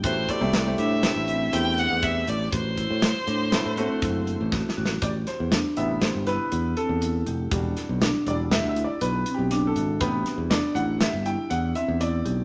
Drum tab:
HH |x--x--x--x--x--x--x--x--x--x--|x--x--x--x--x--x--x--x--------|x--x--x--x--x--x--x--x--x--x--|x--x--x--x--x--x--x--x--x--x--|
SD |------o-----o-----------------|------o-----o-----------o-o-o-|---o--o-----o--o--------------|---o--o-----o-----------o-----|
BD |o--o--------------------o-----|o--o--------------o-----o-----|o-----------------------------|o-----------------------------|

HH |x--x--x--x--x--x--x--x--x--x--|
SD |---o--o-----o-----------------|
BD |o-----------------------------|